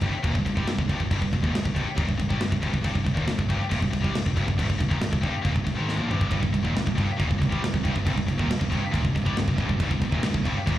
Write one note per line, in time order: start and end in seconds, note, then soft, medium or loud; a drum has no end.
0.01 0.12 C1 medium
0.01 0.12 C2 medium
0.01 0.13 G2 loud
0.01 kick medium
0.01 crash medium
0.13 muted picked electric bass stroke soft
0.13 muted distorted electric guitar stroke medium
0.24 0.34 D#1 medium
0.24 0.34 D#2 loud
0.24 0.34 A#2 loud
0.24 kick medium
0.24 crash medium
0.33 0.45 C1 medium
0.33 0.44 C2 medium
0.33 0.44 G2 medium
0.33 kick medium
0.38 0.45 C2 medium
0.38 0.46 G2 medium
0.45 0.55 C1 medium
0.45 0.56 C2 medium
0.45 0.56 G2 medium
0.45 kick medium
0.45 crash medium
0.57 0.66 C2 loud
0.57 0.66 C3 medium
0.57 0.67 G3 loud
0.57 kick medium
0.67 0.77 C1 medium
0.67 0.77 C2 medium
0.67 0.78 G2 medium
0.67 snare loud
0.67 crash medium
0.78 0.88 C1 medium
0.78 0.87 C2 medium
0.78 0.88 G2 medium
0.78 kick medium
0.88 0.99 C1 medium
0.88 0.99 C2 loud
0.88 0.99 G2 loud
0.88 kick medium
0.88 crash medium
1.00 1.10 C1 medium
1.00 1.10 C2 medium
1.00 1.10 G2 medium
1.00 kick medium
1.11 1.21 C1 medium
1.11 1.20 C2 loud
1.11 1.20 G2 loud
1.11 kick medium
1.11 crash medium
1.21 1.31 C1 medium
1.21 1.31 C2 medium
1.21 1.32 G2 medium
1.21 kick medium
1.33 1.42 C1 medium
1.33 1.43 C2 medium
1.33 1.43 G2 medium
1.33 kick medium
1.33 crash medium
1.43 1.53 D#1 medium
1.43 1.53 D#2 medium
1.43 1.54 A#2 loud
1.43 kick medium
1.54 1.64 C1 medium
1.54 1.63 C2 medium
1.54 1.64 G2 medium
1.54 snare loud
1.54 crash medium
1.65 1.75 C1 medium
1.65 1.74 C2 medium
1.65 1.75 G2 medium
1.65 kick medium
1.75 1.85 C1 medium
1.75 1.85 C2 loud
1.75 1.86 G2 loud
1.75 kick medium
1.75 crash medium
1.86 muted picked electric bass stroke soft
1.86 muted distorted electric guitar stroke medium
1.95 2.07 D#1 loud
1.95 2.06 D#2 loud
1.95 2.07 A#2 loud
1.95 kick loud
1.95 crash medium
2.07 2.18 C1 medium
2.07 2.17 C2 medium
2.07 2.18 G2 medium
2.07 kick medium
2.19 2.29 C1 medium
2.19 2.30 C2 medium
2.19 2.29 G2 medium
2.19 kick medium
2.19 crash medium
2.30 2.40 C2 loud
2.30 2.40 C3 medium
2.30 2.40 G3 loud
2.30 kick medium
2.40 2.50 C1 medium
2.40 2.49 C2 medium
2.40 2.49 G2 medium
2.40 snare loud
2.40 crash medium
2.50 2.62 C1 medium
2.50 2.59 C2 medium
2.50 2.59 G2 medium
2.50 kick medium
2.60 2.73 C1 medium
2.60 2.71 C2 loud
2.60 2.71 G2 loud
2.60 kick medium
2.60 crash medium
2.72 2.84 C1 medium
2.72 2.80 C2 medium
2.72 2.81 G2 medium
2.72 kick medium
2.82 2.94 C1 loud
2.82 2.91 C2 medium
2.82 2.92 G2 loud
2.82 kick loud
2.82 crash medium
2.93 3.05 C1 medium
2.93 3.03 C2 medium
2.93 3.03 G2 medium
2.93 kick medium
3.04 3.16 C1 medium
3.04 3.14 C2 medium
3.04 3.15 G2 medium
3.04 kick medium
3.04 crash medium
3.14 3.27 D#1 medium
3.14 3.26 D#2 medium
3.14 3.26 A#2 loud
3.14 kick medium
3.27 3.38 C1 medium
3.27 3.37 C2 medium
3.27 3.37 G2 medium
3.27 snare loud
3.27 crash medium
3.38 3.48 C1 medium
3.38 3.48 C2 medium
3.38 3.49 G2 medium
3.38 kick loud
3.49 3.59 C1 medium
3.49 3.59 C2 medium
3.49 3.60 G2 loud
3.49 kick medium
3.49 crash medium
3.61 muted picked electric bass stroke soft
3.61 muted distorted electric guitar stroke medium
3.71 3.81 D#1 medium
3.71 3.82 D#2 loud
3.71 3.82 A#2 medium
3.71 kick medium
3.71 crash medium
3.82 3.93 C1 medium
3.82 3.91 C2 medium
3.82 3.91 G2 medium
3.82 kick medium
3.92 4.03 C1 medium
3.92 4.03 C2 medium
3.92 4.03 G2 medium
3.92 kick medium
3.92 crash medium
4.03 4.14 C2 loud
4.03 4.13 C3 medium
4.03 4.14 G3 loud
4.03 kick medium
4.14 4.25 C1 medium
4.14 4.25 C2 medium
4.14 4.25 G2 medium
4.14 snare loud
4.14 crash medium
4.26 4.36 C1 medium
4.26 4.35 C2 medium
4.26 4.36 G2 medium
4.26 kick medium
4.36 4.47 C1 medium
4.36 4.45 C2 medium
4.36 4.46 G2 medium
4.36 kick medium
4.36 crash medium
4.46 4.58 C1 medium
4.46 4.55 C2 medium
4.46 4.56 G2 medium
4.46 kick medium
4.57 4.69 C1 loud
4.57 4.67 C2 medium
4.57 4.67 G2 loud
4.57 kick medium
4.57 crash medium
4.68 4.79 C1 medium
4.68 4.78 C2 medium
4.68 4.78 G2 medium
4.68 kick medium
4.79 4.90 C1 medium
4.79 4.89 C2 medium
4.79 4.90 G2 medium
4.79 kick medium
4.79 crash medium
4.89 4.99 D#1 medium
4.89 5.00 D#2 medium
4.89 5.00 A#2 loud
4.89 kick medium
5.00 5.11 C1 medium
5.00 5.12 C2 medium
5.00 5.12 G2 medium
5.00 snare loud
5.00 crash medium
5.13 5.23 C1 medium
5.13 5.23 C2 medium
5.13 5.23 G2 medium
5.13 kick medium
5.23 5.33 C1 medium
5.23 5.33 C2 medium
5.23 5.34 G2 medium
5.23 kick medium
5.23 crash medium
5.34 muted picked electric bass stroke soft
5.34 muted distorted electric guitar stroke medium
5.45 5.55 D#1 medium
5.45 5.55 D#2 medium
5.45 5.56 A#2 loud
5.45 kick loud
5.45 crash medium
5.53 5.66 C1 medium
5.53 5.63 C2 medium
5.53 5.63 G2 medium
5.53 kick medium
5.58 5.66 C2 medium
5.58 5.67 G2 medium
5.67 5.77 C1 medium
5.67 5.77 C2 medium
5.67 5.78 G2 medium
5.67 kick medium
5.67 crash medium
5.77 5.97 G#1 medium
5.77 5.98 G#2 medium
5.77 5.99 D#3 loud
5.77 5.99 G#3 loud
5.89 snare medium
5.99 6.09 A#1 medium
5.99 6.09 A#2 medium
5.99 6.09 F3 loud
6.10 6.30 C1 loud
6.10 6.29 C2 medium
6.10 6.30 G2 medium
6.10 6.32 C3 loud
6.10 mid tom medium
6.21 kick medium
6.30 6.42 C1 loud
6.30 6.40 C2 medium
6.30 6.40 G2 loud
6.30 kick loud
6.30 crash medium
6.41 6.53 C1 medium
6.41 6.51 C2 medium
6.41 6.51 G2 medium
6.41 kick medium
6.52 6.64 C1 medium
6.52 6.64 C2 medium
6.52 6.64 G2 medium
6.52 kick medium
6.52 crash medium
6.64 6.74 D#1 medium
6.64 6.74 D#2 medium
6.64 6.74 A#2 loud
6.64 kick medium
6.75 6.85 C1 medium
6.75 6.85 C2 medium
6.75 6.85 G2 medium
6.75 snare loud
6.75 crash medium
6.86 6.97 C1 medium
6.86 6.95 C2 medium
6.86 6.96 G2 medium
6.86 kick loud
6.96 7.07 C1 medium
6.96 7.07 C2 medium
6.96 7.07 G2 loud
6.96 kick medium
6.96 crash medium
7.08 muted distorted electric guitar stroke medium
7.08 muted picked electric bass stroke soft
7.18 7.29 D#1 loud
7.18 7.28 D#2 medium
7.18 7.29 A#2 loud
7.18 kick loud
7.18 crash medium
7.29 7.40 C1 medium
7.29 7.40 C2 medium
7.29 7.40 G2 medium
7.29 kick medium
7.41 7.51 C1 medium
7.41 7.52 C2 medium
7.41 7.52 G2 medium
7.41 kick medium
7.41 crash medium
7.52 7.62 C2 medium
7.52 7.62 C3 medium
7.52 7.62 G3 loud
7.52 kick medium
7.63 7.73 C1 medium
7.63 7.73 C2 medium
7.63 7.73 G2 medium
7.63 snare loud
7.63 crash medium
7.74 7.84 C1 medium
7.74 7.84 C2 medium
7.74 7.84 G2 medium
7.74 kick medium
7.85 7.95 C1 medium
7.85 7.94 C2 medium
7.85 7.95 G2 medium
7.85 kick medium
7.85 crash medium
7.95 8.05 C1 medium
7.95 8.05 C2 medium
7.95 8.07 G2 medium
7.95 kick medium
8.06 8.16 C1 medium
8.06 8.16 C2 medium
8.06 8.15 G2 medium
8.06 kick loud
8.06 crash medium
8.17 8.27 C1 medium
8.17 8.27 C2 medium
8.17 8.27 G2 medium
8.17 kick medium
8.28 8.38 C1 medium
8.28 8.39 C2 medium
8.28 8.39 G2 medium
8.28 kick medium
8.28 crash medium
8.39 8.49 D#1 medium
8.39 8.49 D#2 medium
8.39 8.49 A#2 loud
8.39 kick medium
8.50 8.60 C1 medium
8.50 8.60 C2 medium
8.50 8.61 G2 medium
8.50 snare loud
8.50 crash medium
8.61 8.70 C1 medium
8.61 8.69 C2 medium
8.61 8.70 G2 medium
8.61 kick medium
8.70 8.81 C1 medium
8.70 8.80 C2 loud
8.70 8.81 G2 loud
8.70 kick medium
8.70 crash medium
8.81 muted distorted electric guitar stroke medium
8.81 muted picked electric bass stroke soft
8.92 9.03 D#1 loud
8.92 9.03 D#2 medium
8.92 9.03 A#2 loud
8.92 kick medium
8.92 crash medium
9.04 9.14 C1 medium
9.04 9.13 C2 medium
9.04 9.14 G2 medium
9.04 kick medium
9.11 9.25 C2 medium
9.11 9.22 G2 medium
9.15 9.25 C1 medium
9.15 9.24 G2 medium
9.15 kick medium
9.15 crash medium
9.25 9.36 C2 medium
9.25 9.35 C3 medium
9.25 9.36 G3 loud
9.25 kick medium
9.36 9.47 C1 medium
9.36 9.45 C2 medium
9.36 9.46 G2 medium
9.36 snare loud
9.36 crash medium
9.46 9.57 C1 medium
9.46 9.55 C2 medium
9.46 9.56 G2 medium
9.46 kick medium
9.56 9.68 C1 loud
9.56 9.66 C2 loud
9.56 9.66 G2 loud
9.56 kick medium
9.56 crash medium
9.67 9.79 C1 medium
9.67 9.78 C2 medium
9.67 9.78 G2 medium
9.67 kick medium
9.71 9.81 C2 medium
9.71 9.81 G2 medium
9.79 9.90 C1 medium
9.79 9.89 C2 medium
9.79 9.89 G2 loud
9.79 kick loud
9.79 crash medium
9.84 9.92 G2 loud
9.90 10.00 C1 medium
9.90 9.98 C2 medium
9.90 9.99 G2 medium
9.90 kick medium
9.99 10.11 C1 medium
9.99 10.10 C2 medium
9.99 10.10 G2 medium
9.99 kick medium
9.99 crash medium
10.04 10.13 C2 medium
10.11 10.22 D#1 medium
10.11 10.21 D#2 medium
10.11 10.21 A#2 loud
10.11 kick medium
10.15 10.24 A#2 loud
10.22 10.33 C1 medium
10.22 10.30 C2 medium
10.22 10.31 G2 medium
10.22 snare loud
10.22 crash medium
10.32 10.44 C1 medium
10.32 10.43 C2 medium
10.32 10.43 G2 medium
10.32 kick loud
10.44 10.54 C1 medium
10.44 10.54 C2 medium
10.44 10.55 G2 loud
10.44 kick medium
10.44 crash medium
10.54 muted picked electric bass stroke soft
10.54 muted distorted electric guitar stroke medium
10.66 10.77 D#1 loud
10.66 10.76 D#2 loud
10.66 10.77 A#2 loud
10.66 kick loud
10.66 crash medium